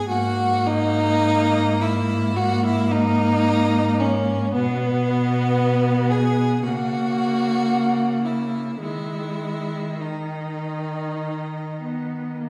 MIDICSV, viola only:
0, 0, Header, 1, 2, 480
1, 0, Start_track
1, 0, Key_signature, 5, "minor"
1, 0, Tempo, 1136364
1, 44, Time_signature, 4, 2, 24, 8
1, 1005, Tempo, 1098901
1, 1485, Tempo, 1054482
1, 3405, Tempo, 1123596
1, 3885, Tempo, 1197605
1, 5356, End_track
2, 0, Start_track
2, 0, Title_t, "Viola"
2, 0, Program_c, 0, 41
2, 46, Note_on_c, 0, 58, 81
2, 989, Note_off_c, 0, 58, 0
2, 1007, Note_on_c, 0, 58, 90
2, 1950, Note_off_c, 0, 58, 0
2, 1966, Note_on_c, 0, 59, 81
2, 2917, Note_on_c, 0, 58, 74
2, 2924, Note_off_c, 0, 59, 0
2, 3883, Note_off_c, 0, 58, 0
2, 3884, Note_on_c, 0, 56, 51
2, 4351, Note_off_c, 0, 56, 0
2, 4359, Note_on_c, 0, 51, 56
2, 5070, Note_off_c, 0, 51, 0
2, 5086, Note_on_c, 0, 59, 54
2, 5321, Note_on_c, 0, 58, 44
2, 5327, Note_off_c, 0, 59, 0
2, 5356, Note_off_c, 0, 58, 0
2, 5356, End_track
0, 0, End_of_file